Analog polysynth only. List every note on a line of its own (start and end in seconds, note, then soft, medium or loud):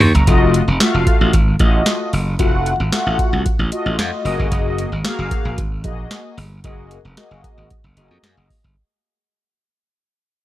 0.01 0.14 C#6 medium
0.15 0.40 A#5 medium
0.27 0.62 A3 medium
0.27 0.62 F4 medium
0.27 0.63 F#4 medium
0.27 0.63 D#5 medium
0.80 1.32 A3 medium
0.80 1.32 F4 medium
0.80 1.32 F#4 medium
0.80 0.87 E5 medium
0.87 1.36 F5 loud
1.59 2.12 A3 medium
1.59 2.12 F4 medium
1.59 2.12 F#4 medium
1.59 2.12 D#5 medium
2.39 2.74 A3 medium
2.39 2.74 F4 medium
2.39 2.74 F#4 medium
2.39 2.75 F#5 loud
2.92 3.44 A3 medium
2.92 3.44 F4 medium
2.92 3.44 F#4 medium
2.92 3.45 F#5 medium
3.71 4.24 A3 medium
3.71 4.24 F4 medium
3.71 4.24 F#4 medium
3.71 4.24 D#5 medium
4.25 4.89 A#3 medium
4.25 4.90 F#4 medium
4.25 4.90 G#4 medium
4.25 4.90 D#5 loud
5.04 5.56 A#3 medium
5.04 5.57 F#4 medium
5.04 5.57 G#4 medium
5.04 5.57 F5 loud
5.84 6.36 A#3 medium
5.84 6.36 F#4 medium
5.84 6.37 G#4 medium
5.84 6.37 D#5 medium
6.64 6.99 A#3 medium
6.64 6.99 F#4 medium
6.64 6.99 G#4 medium
6.64 7.00 D#5 medium
7.17 7.69 A#3 medium
7.17 7.69 F#4 medium
7.17 7.69 G#4 medium
7.17 7.70 D#5 medium
7.97 8.49 A#3 medium
7.97 8.49 F#4 medium
7.97 8.49 G#4 medium
7.97 8.49 D#5 medium